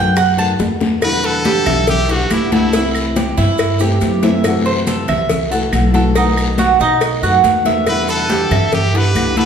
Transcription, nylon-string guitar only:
Already playing: D#3 A3 B3 F#4
0.16 muted nylon-string guitar stroke
0.37 D#3 A3 B3 F#4
0.58 D#3 A3 B3 F#4
1.01 B2 D3 G3 B3 E4
1.87 muted nylon-string guitar stroke
2.08 D3 G3 B3 E4
2.30 D3 G3 B3 E4
2.51 D3 G3 B3 E4
2.73 C3 E3 A3 C4 E4
3.58 muted nylon-string guitar stroke
3.80 E3 A3 C4 E4
4.01 E3 A3 C4 E4
4.22 E3 A3 C4 E4
4.44 C3 E3 A3 E4 F#4
5.30 muted nylon-string guitar stroke
5.51 E3 A3 E4 F#4
5.72 E3 A3 E4 F#4
5.94 E3 A3 E4 F#4
6.15 B2 D#3 A3 B3 F#4
7.01 muted nylon-string guitar stroke
7.23 D#3 A3 B3 F#4
7.44 D#3 A3 B3 F#4
7.65 D#3 A3 B3 F#4
7.86 B2 D3 G3 B3 E4
8.72 muted nylon-string guitar stroke
8.94 D3 G3 B3 E4
9.15 D3 G3 B3 E4
9.36 D3 G3 B3 E4

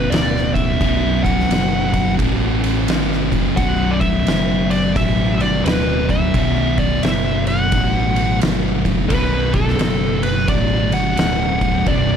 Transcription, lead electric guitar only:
Already playing: B4
0.10 D5
0.54 E5
1.23 F#5
3.57 F#5
3.91 D5
4.00 E5
4.70 D5
4.97 E5
5.41 D5
5.65 B4
6.10 E5
6.78 D5
7.03 E5
7.48 F#5
9.09 B4
9.54 A4
10.23 B4
10.49 D5
10.93 F#5
11.88 D5

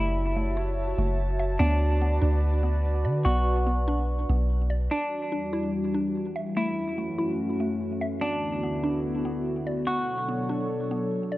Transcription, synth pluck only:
Already playing: A3
0.36 A3
0.57 E4
0.98 A3
1.39 E5
1.60 B3
2.02 B3
2.22 D4
2.63 B3
3.05 D5
3.26 B3
3.67 B3
3.88 D4
4.29 B3
4.70 D5
4.91 D4
5.32 D4
5.53 E4
5.94 D4
6.36 E5
6.57 A3
6.98 A3
7.18 E4
7.60 A3
8.01 E5
8.22 B3
8.63 B3
8.84 D4
9.25 B3
9.67 D5
9.88 B3
10.29 B3
10.49 D4
10.91 B3
11.32 D5

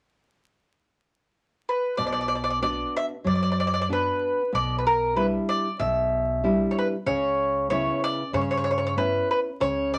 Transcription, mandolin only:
1.69 B4
1.97 D5
2.07 D5
2.12 D5
2.21 D5
2.28 D5
2.35 D5
2.44 D5
2.50 D5
2.63 D5
2.96 E5
3.27 D5
3.35 D5
3.43 D5
3.52 D5
3.60 D5
3.67 D5
3.74 D5
3.81 D5
3.93 B4
4.55 D5
4.78 B4
4.87 A#4
5.17 B4
5.49 D5
5.80 E5
6.71 C#5
6.79 B4
7.06 C#5
7.70 C#5
8.04 D5
8.34 C#5
8.41 C#5
8.51 C#5
8.57 C#5
8.64 C#5
8.71 C#5
8.78 C#5
8.87 C#5
8.98 B4
9.31 B4
9.61 C#5
9.94 D5

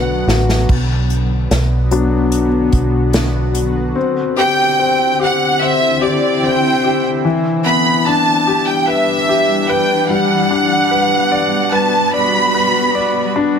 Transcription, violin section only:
Already playing: F#5
4.38 G5
5.22 F#5
5.61 E5
6.02 D5
6.43 G5
7.65 B5
8.07 A5
8.67 G5
8.87 E5
9.69 G5
10.10 F#5
11.72 A5
12.13 B5

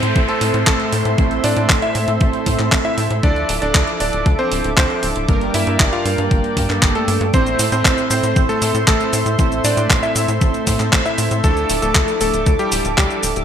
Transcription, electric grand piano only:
Already playing: C4 C5
0.29 A3 A4
0.67 A3 A4
1.44 D4 D5
1.82 E4 E5
2.85 E4 E5
3.23 D4 D5
3.62 D4 D5
4.01 D4 D5
4.39 C4 C5
4.77 C4 C5
5.54 E4 E5
5.93 F4 F5
6.95 A3 A4
7.34 C4 C5
7.72 C4 C5
8.11 C4 C5
8.49 A3 A4
8.87 A3 A4
9.64 D4 D5
10.03 E4 E5
11.06 E4 E5
11.44 A3 A4
11.82 A3 A4
12.21 A3 A4
12.59 G3 G4
12.98 G3 G4

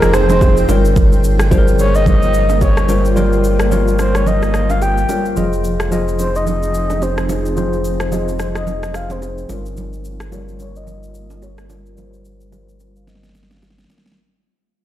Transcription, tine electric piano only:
Already playing: F3 F4 G#4 C5 D#5 F5
0.68 G3 F4 A#4 C#5
1.50 G3 F4 G#4 C5
1.58 A#4
2.88 G3 F4 A#4 C5
3.15 G3 F4 A#4 C#5
3.70 G3 F4 A#4 C#5
5.08 G3 F4 A#4 C#5
5.36 F3 F4 G#4 D#5
5.91 F3 F4 G#4 D#5
7.28 F3 F4 G#4 C5
7.56 F3 F4 G#4 C5
8.11 F3 F4 G#4 D#5
9.49 G3 F4 A#4 C#5
10.31 G3 F4 A#4 C#5
11.69 G3 F4 A#4 C#5
11.96 G3 F4 A#4 C5
12.51 G3 F4 A#4 C5
13.89 G3 F4 A#4 C#5

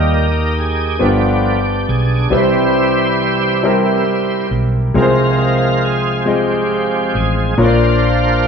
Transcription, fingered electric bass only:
Already playing: D#2
1.01 G1
1.89 B1
2.31 C2
4.51 B1
4.95 C2
7.15 A1
7.57 A#1

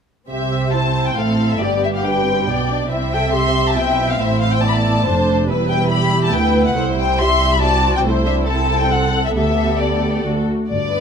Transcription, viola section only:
0.29 C4 G4
0.73 E4
1.17 C4 E4
1.60 B3 G4
2.04 D4
2.26 C4
2.47 B3 D4
2.69 D4
2.91 C4 E4
3.12 A4
3.34 C4 G4
3.77 E4
4.21 E4
4.64 B3
5.06 A3 D4
5.48 G3 E4
5.70 E4
6.33 B3
6.76 A3 E4
6.98 G3
7.19 G4
7.62 C4 F#4
8.05 A3 E4
8.26 D4
8.48 C4
8.91 A4
9.35 B3 G4
10.25 A3 F#4
10.91 B3 D4

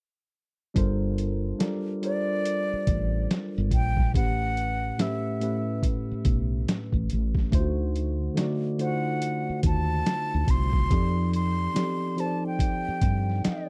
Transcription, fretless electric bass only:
0.77 G1
2.73 muted fretless electric bass stroke
2.88 A1
3.58 G1
3.72 A#1
4.15 A1
6.11 muted fretless electric bass stroke
6.26 B1
6.94 A1
7.12 A1
7.53 D2
9.49 muted fretless electric bass stroke
9.64 D#2
10.34 D2
10.48 C2
10.92 F2
12.88 muted fretless electric bass stroke
13.03 G2
13.47 muted fretless electric bass stroke

